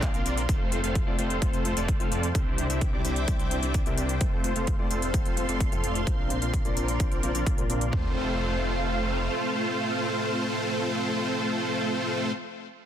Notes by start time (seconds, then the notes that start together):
Already playing: A#1 C4 D4 F4 A#4 D5 F5 C6
0.02 A#2 A#3 D4 F4 F5, kick, clap, closed hi-hat
0.14 A#1 C4 D4 F4 A#4 F5, closed hi-hat
0.26 A#1 C4 D4 F4 A#4 D5, closed hi-hat
0.37 closed hi-hat
0.49 F1 A3 C4 F4 A4 C5, kick, closed hi-hat
0.71 A3 C4 F4 C5, closed hi-hat
0.84 F1 A3 C4 F4 A4 F5, closed hi-hat
0.95 kick, closed hi-hat
1.06 F1 A3 C4 F4 A4 D5
1.18 F1 A3 C4 F4 A4 C5, closed hi-hat
1.30 closed hi-hat
1.41 F1 A3 C4 F4 A4 C5 F5, kick, closed hi-hat
1.53 F1 A3 C4 F4 A4 C5, closed hi-hat
1.64 A3 C4 F4 C5, closed hi-hat
1.77 F1 A3 C4 F4 A4 D5, closed hi-hat
1.88 kick, closed hi-hat
1.99 F1 A3 C4 F4 A4 F5, closed hi-hat
2.11 F2 A3 C4 F4 A4 D5, closed hi-hat
2.23 closed hi-hat
2.35 C2 C4 D4 E4 G4 C5 E5 G5 D6, kick, closed hi-hat
2.57 C3 G3 D4 E4 C5, closed hi-hat
2.70 C2 C4 D4 E4 G4 E5, closed hi-hat
2.81 kick, closed hi-hat
2.92 C2 C3 G3 C4 D4 E4 G4 D5
3.04 C2 C4 D4 E4 G4 C5, closed hi-hat
3.16 closed hi-hat
3.27 C2 C3 G3 C4 D4 E4 G4 C5 E5, kick, closed hi-hat
3.39 C2 C4 D4 E4 G4 C5, closed hi-hat
3.51 C3 G3 D4 E4 C5, closed hi-hat
3.63 C2 C4 D4 E4 G4 D5, closed hi-hat
3.74 kick, closed hi-hat
3.85 C2 C3 G3 C4 D4 E4 G4 A#4 E5, closed hi-hat
3.98 C2 C4 D4 E4 G4 D5, closed hi-hat
4.09 closed hi-hat
4.21 F1 A3 C4 F4 A4 C5 F5 C6, kick, closed hi-hat
4.44 A3 C4 F4 C5, closed hi-hat
4.56 F1 A3 C4 F4 A4 F5, closed hi-hat
4.67 kick, closed hi-hat
4.79 F1 A3 C4 F4 A4 D5
4.91 F1 A3 C4 F4 A4 C5, closed hi-hat
5.02 closed hi-hat
5.13 F1 A3 C4 F4 A4 C5 F5, kick, closed hi-hat
5.25 F1 A3 C4 F4 A4 C5, closed hi-hat
5.37 A3 C4 F4 C5, closed hi-hat
5.49 F1 A3 C4 F4 A4 D5, closed hi-hat
5.60 kick, closed hi-hat
5.71 F2 A3 C4 F4 A4 F5, closed hi-hat
5.84 F1 A3 C4 F4 A4 D5, closed hi-hat
5.95 closed hi-hat
6.07 A#1 C4 D4 F4 A#4 C5 D5, kick, closed hi-hat
6.30 A#2 A#3 D4 F4 C5, closed hi-hat
6.42 A#1 C4 D4 F4 A#4 F5, closed hi-hat
6.53 kick, closed hi-hat
6.64 A#1 A#2 A#3 C4 D4 F4 A#4 D5, closed hi-hat
6.77 A#1 C4 D4 F4 A#4 C5, closed hi-hat
6.88 closed hi-hat
6.99 A#1 A#2 A#3 C4 D4 F4 A#4 C5 F5, kick, closed hi-hat
7.12 A#1 C4 D4 F4 A#4 C5, closed hi-hat
7.23 A#1 A#2 A#3 C4 D4 F4 A#4 C5, closed hi-hat
7.35 A#1 C4 D4 F4 A#4 D5, closed hi-hat
7.46 A#1 C4 D4 F4 A#4 C5, kick, closed hi-hat
7.57 A#2 A#3 D4 F4 A#4, closed hi-hat
7.70 A#1 C4 D4 F4 A#4 D5, closed hi-hat
7.81 closed hi-hat
7.91 F1 A3 C4 F4 A4 C5 F5, kick, floor tom